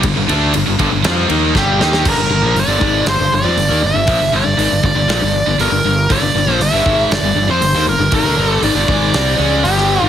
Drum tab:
CC |----------------|x---------------|----------------|----------------|
RD |x-x-x-x-x-x-----|----------------|----------------|----------------|
HH |----------------|----o---o---o---|o---o---o---o---|o---o---o---o---|
SD |--------o---o-oo|--------o-------|--------o-------|--------o----o--|
BD |o-----o-----o---|o-----o---------|o-----o---------|o-----o---------|

CC |----------------|
RD |----------------|
HH |o---o---o---o---|
SD |--------o----o--|
BD |o-----o---------|